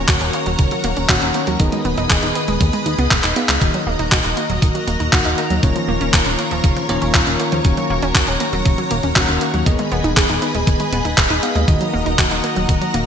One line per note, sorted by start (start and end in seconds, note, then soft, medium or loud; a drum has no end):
0.00 1.06 D#3 medium
0.00 1.06 A#3 medium
0.00 1.06 C#4 medium
0.00 1.06 F#4 medium
0.00 1.58 F#4 medium
0.00 1.58 A#4 medium
0.00 1.06 C#5 medium
0.00 1.56 C#5 medium
0.00 1.56 A#5 medium
0.08 0.18 D#1 loud
0.08 0.19 F#4 loud
0.08 kick loud
0.08 clap loud
0.08 closed hi-hat medium
0.21 0.31 D#1 medium
0.21 0.32 C#4 medium
0.21 closed hi-hat soft
0.33 0.40 A#3 medium
0.33 closed hi-hat medium
0.46 0.56 D#1 medium
0.46 0.57 F#3 loud
0.46 closed hi-hat soft
0.59 0.68 D#1 loud
0.59 0.71 C#3 medium
0.59 kick loud
0.59 closed hi-hat medium
0.71 0.82 F#3 medium
0.71 closed hi-hat soft
0.84 0.94 D#1 loud
0.84 0.90 A#3 loud
0.84 closed hi-hat medium
0.97 1.06 D#1 medium
0.97 1.09 C#4 medium
0.97 closed hi-hat soft
1.09 1.19 D#1 loud
1.09 1.57 D#3 medium
1.09 1.57 A#3 medium
1.09 1.57 C#4 medium
1.09 1.57 F#4 medium
1.09 1.20 F#4 medium
1.09 1.57 F#5 loud
1.09 kick loud
1.09 clap loud
1.09 closed hi-hat medium
1.22 1.31 D#1 medium
1.22 1.32 C#4 medium
1.22 closed hi-hat soft
1.34 1.41 A#3 medium
1.34 closed hi-hat medium
1.47 1.57 D#2 medium
1.47 1.58 F#3 loud
1.47 closed hi-hat soft
1.60 1.69 D#1 loud
1.60 2.83 D#3 medium
1.60 1.72 D#3 medium
1.60 2.83 B3 medium
1.60 2.83 D#4 medium
1.60 2.83 G#4 medium
1.60 3.59 G#4 medium
1.60 3.59 B4 medium
1.60 5.59 D#5 medium
1.60 2.83 D#5 medium
1.60 3.59 B5 medium
1.60 kick loud
1.60 closed hi-hat medium
1.72 1.83 G#3 medium
1.72 closed hi-hat soft
1.85 1.94 D#1 medium
1.85 1.91 B3 loud
1.85 closed hi-hat soft
1.98 2.07 D#1 medium
1.98 2.08 D#4 loud
1.98 closed hi-hat soft
2.10 2.20 D#1 loud
2.10 2.21 G#4 loud
2.10 kick loud
2.10 clap loud
2.10 closed hi-hat medium
2.23 2.32 D#1 medium
2.23 2.33 D#4 medium
2.23 closed hi-hat soft
2.35 2.42 B3 medium
2.35 closed hi-hat medium
2.48 2.58 D#1 medium
2.48 2.58 G#3 loud
2.48 closed hi-hat soft
2.61 2.70 D#2 loud
2.61 2.73 D#3 medium
2.61 kick loud
2.61 closed hi-hat medium
2.73 2.84 G#3 medium
2.73 closed hi-hat soft
2.86 2.95 D#2 loud
2.86 2.92 D#4 medium
2.86 closed hi-hat medium
2.98 3.08 C#2 medium
2.98 3.09 B3 loud
2.98 closed hi-hat soft
3.11 3.21 D#1 loud
3.11 3.17 D#3 medium
3.11 kick loud
3.11 clap loud
3.11 closed hi-hat medium
3.24 3.33 D#1 medium
3.24 3.30 D#4 medium
3.24 clap medium
3.24 closed hi-hat soft
3.36 3.58 B3 medium
3.36 3.47 B3 medium
3.36 3.58 D#4 medium
3.36 3.58 G#4 medium
3.36 3.58 F5 medium
3.36 closed hi-hat medium
3.49 3.58 C#2 medium
3.49 3.59 D#4 medium
3.49 clap loud
3.49 closed hi-hat soft
3.61 3.71 D#1 medium
3.61 5.10 D#3 medium
3.61 3.74 D#3 medium
3.61 5.10 A#3 medium
3.61 5.10 D#4 medium
3.61 5.61 F#4 medium
3.61 5.10 F#4 medium
3.61 9.62 A#4 medium
3.61 5.10 D#5 medium
3.61 7.61 A#5 medium
3.61 kick loud
3.61 closed hi-hat medium
3.74 3.84 F#3 medium
3.74 closed hi-hat soft
3.87 3.96 D#1 medium
3.87 3.93 A#3 loud
3.99 4.09 D#1 medium
3.99 4.10 D#4 medium
3.99 closed hi-hat soft
4.12 4.21 D#1 loud
4.12 4.22 F#4 medium
4.12 kick loud
4.12 clap loud
4.12 closed hi-hat medium
4.24 4.34 D#1 medium
4.24 4.35 D#4 medium
4.24 closed hi-hat soft
4.37 4.43 A#3 medium
4.37 closed hi-hat medium
4.50 4.59 D#1 medium
4.50 4.60 F#3 loud
4.50 closed hi-hat soft
4.62 4.72 D#1 loud
4.62 4.74 D#3 medium
4.62 kick loud
4.62 closed hi-hat medium
4.75 4.85 F#3 medium
4.75 closed hi-hat soft
4.87 4.97 D#1 medium
4.87 4.94 A#3 medium
4.87 closed hi-hat medium
5.00 5.10 D#1 medium
5.00 5.12 D#4 medium
5.00 closed hi-hat soft
5.13 5.22 D#1 loud
5.13 5.60 D#3 medium
5.13 5.60 A#3 medium
5.13 5.60 D#4 medium
5.13 5.23 F#4 medium
5.13 5.60 F#4 medium
5.13 5.60 F#5 loud
5.13 kick loud
5.13 clap loud
5.13 closed hi-hat medium
5.25 5.35 D#1 medium
5.25 5.36 D#4 medium
5.25 closed hi-hat soft
5.38 5.44 A#3 medium
5.38 closed hi-hat medium
5.50 5.60 D#2 medium
5.50 5.61 F#3 medium
5.50 closed hi-hat soft
5.63 5.73 D#1 loud
5.63 5.75 C#3 medium
5.63 6.86 D#3 medium
5.63 6.86 A#3 medium
5.63 6.86 C#4 medium
5.63 6.86 F4 medium
5.63 7.63 F4 medium
5.63 6.86 C#5 loud
5.63 9.63 C#5 medium
5.63 kick loud
5.63 closed hi-hat medium
5.76 5.86 F3 medium
5.76 closed hi-hat soft
5.88 5.98 D#1 loud
5.88 5.95 A#3 loud
6.01 6.10 D#1 medium
6.01 6.11 C#4 loud
6.01 closed hi-hat soft
6.13 6.23 D#1 loud
6.13 6.24 F4 loud
6.13 kick loud
6.13 clap loud
6.13 closed hi-hat medium
6.26 6.36 D#1 medium
6.26 6.36 C#4 medium
6.26 closed hi-hat soft
6.39 6.45 A#3 medium
6.39 closed hi-hat medium
6.51 6.61 D#1 medium
6.51 6.62 F3 loud
6.51 closed hi-hat soft
6.64 6.73 D#1 loud
6.64 6.76 C#3 medium
6.64 kick loud
6.64 closed hi-hat medium
6.77 6.87 F3 medium
6.77 closed hi-hat soft
6.89 6.99 D#1 medium
6.89 6.99 D#3 loud
6.89 6.95 A#3 medium
6.89 6.99 A#3 medium
6.89 6.99 C#4 medium
6.89 6.99 F4 medium
6.89 6.99 C#5 loud
6.89 closed hi-hat medium
7.02 7.11 D#1 medium
7.02 7.62 D#3 medium
7.02 7.62 A#3 medium
7.02 7.14 C#4 medium
7.02 7.62 C#4 medium
7.02 7.62 F4 medium
7.02 7.62 C#5 medium
7.02 closed hi-hat soft
7.14 7.24 D#1 loud
7.14 7.25 F4 medium
7.14 kick loud
7.14 clap loud
7.14 closed hi-hat medium
7.27 7.36 D#1 medium
7.27 7.37 C#4 medium
7.27 closed hi-hat soft
7.40 7.46 A#3 medium
7.40 closed hi-hat medium
7.52 7.62 D#2 medium
7.52 7.63 F3 loud
7.52 closed hi-hat soft
7.65 7.74 D#1 loud
7.65 7.77 C#3 medium
7.65 9.13 D#3 medium
7.65 9.13 A#3 medium
7.65 9.13 C#4 medium
7.65 9.64 F#4 medium
7.65 9.13 F#4 medium
7.65 9.13 C#5 medium
7.65 9.64 A#5 medium
7.65 kick loud
7.65 closed hi-hat medium
7.77 7.88 F#3 medium
7.77 closed hi-hat soft
7.90 7.99 D#1 loud
7.90 7.96 A#3 loud
8.02 8.12 D#1 medium
8.02 8.13 C#4 loud
8.02 closed hi-hat soft
8.15 8.25 D#1 loud
8.15 8.26 F#4 loud
8.15 kick loud
8.15 clap loud
8.15 closed hi-hat medium
8.28 8.37 D#1 medium
8.28 8.38 C#4 medium
8.28 closed hi-hat soft
8.40 8.47 A#3 medium
8.40 closed hi-hat medium
8.53 8.62 D#1 medium
8.53 8.63 F#3 loud
8.53 closed hi-hat soft
8.65 8.75 D#1 loud
8.65 8.78 C#3 medium
8.65 kick loud
8.65 closed hi-hat medium
8.78 8.89 F#3 medium
8.78 closed hi-hat soft
8.91 9.00 D#1 loud
8.91 8.97 A#3 loud
8.91 closed hi-hat medium
9.03 9.13 D#1 medium
9.03 9.16 C#4 medium
9.03 closed hi-hat soft
9.16 9.26 D#1 loud
9.16 9.63 D#3 medium
9.16 9.63 A#3 medium
9.16 9.63 C#4 medium
9.16 9.63 F#4 medium
9.16 9.26 F#4 medium
9.16 9.63 F#5 loud
9.16 kick loud
9.16 clap loud
9.16 closed hi-hat medium
9.29 9.38 D#1 medium
9.29 9.39 C#4 medium
9.29 closed hi-hat soft
9.41 9.48 A#3 medium
9.41 closed hi-hat medium
9.54 9.63 D#2 medium
9.54 9.64 F#3 medium
9.54 closed hi-hat soft
9.66 9.76 D#1 loud
9.66 10.89 D#3 medium
9.66 9.79 D#3 medium
9.66 10.89 B3 medium
9.66 10.89 D#4 medium
9.66 11.66 G#4 medium
9.66 10.89 G#4 medium
9.66 11.66 B4 medium
9.66 13.06 D#5 medium
9.66 10.89 D#5 loud
9.66 11.66 B5 medium
9.66 kick loud
9.66 closed hi-hat medium
9.79 9.89 G#3 medium
9.79 closed hi-hat soft
9.92 10.01 D#1 medium
9.92 9.98 B3 loud
9.92 closed hi-hat soft
10.04 10.14 D#1 medium
10.04 10.15 D#4 loud
10.04 closed hi-hat soft
10.17 10.26 D#1 loud
10.17 10.27 G#4 loud
10.17 kick loud
10.17 clap loud
10.17 closed hi-hat medium
10.30 10.39 D#1 medium
10.30 10.40 D#4 medium
10.30 closed hi-hat soft
10.42 10.48 B3 medium
10.42 closed hi-hat medium
10.55 10.64 D#1 medium
10.55 10.65 G#3 medium
10.55 closed hi-hat soft
10.67 10.77 D#1 medium
10.67 10.79 D#3 medium
10.67 kick loud
10.67 closed hi-hat medium
10.80 10.90 G#3 medium
10.80 closed hi-hat soft
10.92 11.02 D#1 loud
10.92 10.99 B3 loud
10.92 closed hi-hat medium
11.05 11.15 D#1 medium
11.05 11.17 D#4 medium
11.05 closed hi-hat soft
11.18 11.27 D#1 loud
11.18 11.28 G#4 medium
11.18 kick loud
11.18 clap loud
11.18 closed hi-hat medium
11.30 11.40 D#1 medium
11.30 11.41 D#4 medium
11.30 closed hi-hat soft
11.43 11.65 B3 medium
11.43 11.49 B3 medium
11.43 11.65 D#4 medium
11.43 11.65 G#4 medium
11.43 11.65 F5 medium
11.43 closed hi-hat medium
11.55 11.65 D#2 medium
11.55 11.66 G#3 loud
11.55 closed hi-hat soft
11.68 11.78 D#1 medium
11.68 13.06 D#3 medium
11.68 11.80 D#3 medium
11.68 13.06 A#3 medium
11.68 13.06 D#4 medium
11.68 13.06 F#4 medium
11.68 13.06 A#4 medium
11.68 13.06 D#5 medium
11.68 13.06 A#5 medium
11.68 kick loud
11.68 closed hi-hat medium
11.81 11.91 F#3 medium
11.81 closed hi-hat soft
11.94 12.03 D#1 medium
11.94 12.00 A#3 loud
12.06 12.16 D#1 medium
12.06 12.16 D#4 loud
12.06 closed hi-hat soft
12.18 12.28 D#1 loud
12.18 12.29 F#4 loud
12.18 kick loud
12.18 clap loud
12.18 closed hi-hat medium
12.31 12.41 D#1 medium
12.31 12.42 D#4 medium
12.31 closed hi-hat soft
12.44 12.50 A#3 medium
12.44 closed hi-hat medium
12.56 12.66 D#1 medium
12.56 12.67 F#3 loud
12.56 closed hi-hat soft
12.69 12.78 D#1 loud
12.69 12.81 D#3 medium
12.69 kick loud
12.69 closed hi-hat medium
12.82 12.92 F#3 medium
12.82 closed hi-hat soft
12.94 13.04 D#1 loud
12.94 13.00 A#3 medium
12.94 closed hi-hat medium